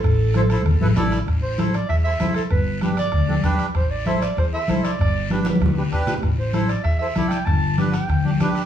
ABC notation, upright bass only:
X:1
M:4/4
L:1/8
Q:1/4=194
K:Am
V:1 name="Upright bass" clef=bass
A,,,4 E,, A,,, A,,,2 | A,,,4 E,,2 C,, z | G,,,4 D,,2 B,,, z | A,,,4 E,,2 C,, z |
G,,,4 D,,2 B,,, z | A,,,4 E,,2 C,, z | G,,,4 D,,2 B,,, z |]